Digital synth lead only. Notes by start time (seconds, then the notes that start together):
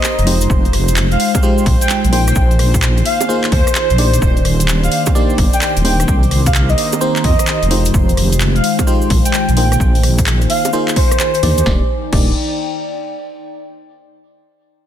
Already playing: D#5
1.12 F5
1.20 F5
1.81 G5
2.13 G5
2.28 G5
3.06 F5
3.52 C5
3.75 C5
3.98 C5
4.84 F5
4.92 F5
5.53 G5
5.85 G5
6.00 G5
6.46 F5
6.70 D#5
6.78 D#5
7.24 D#5
8.56 F5
8.64 F5
9.25 G5
9.57 G5
9.72 G5
10.50 F5
10.96 C5
11.20 C5
11.43 C5